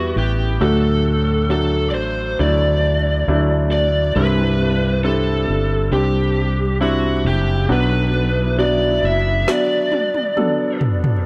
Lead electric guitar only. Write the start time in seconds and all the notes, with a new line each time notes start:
Already playing: F#4
0.18 G4
0.61 A4
1.51 A4
1.90 D5
1.94 C5
2.40 D5
3.72 D5
4.16 B4
5.05 A4
5.93 G4
6.82 F#4
7.27 G4
7.72 B4
8.59 D5
9.05 E5
9.50 D5